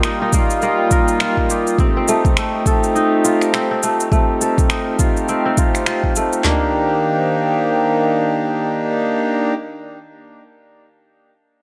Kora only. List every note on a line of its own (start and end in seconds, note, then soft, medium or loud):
0.00 0.34 A#3 medium
0.00 0.98 F4 medium
0.00 1.16 G4 medium
0.00 0.44 A#4 medium
0.05 0.21 D#4 medium
0.22 1.84 D#4 medium
0.34 0.62 A#3 medium
0.63 2.15 A#3 medium
0.92 2.15 A#4 medium
1.21 2.73 F4 medium
1.51 2.92 G4 medium
1.80 1.96 C4 medium
1.97 3.54 C4 medium
2.09 2.38 A3 medium
2.38 3.83 A3 medium
2.67 3.99 A4 medium
2.95 4.58 D#4 medium
3.25 4.76 F4 medium
3.54 3.71 C4 medium
3.71 5.28 C4 medium
3.83 4.12 A3 medium
4.12 6.12 A3 medium
4.41 5.73 A4 medium
4.70 6.32 D#4 medium
4.99 5.58 F4 medium
5.29 5.45 C4 medium
5.46 7.26 C4 medium
5.58 5.87 F4 medium
5.87 7.38 F4 medium
6.17 6.51 A3 medium
6.45 8.38 A#3 medium